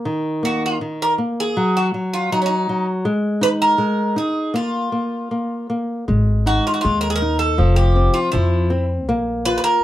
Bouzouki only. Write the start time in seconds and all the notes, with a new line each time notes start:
0.45 F#4
0.66 F4
1.02 A#4
1.40 G#4
1.77 F#4
2.13 F4
2.32 D#4
2.42 C#4
2.46 D#4
3.43 B4
3.62 A#4
4.18 G#4
4.56 F4
6.47 F#4
6.67 F4
6.74 F#4
6.81 F4
7.01 A#4
7.10 G#4
7.16 A#4
7.39 A4
7.76 G4
8.14 F4
8.32 E4
9.45 B4
9.58 B4
9.64 A#4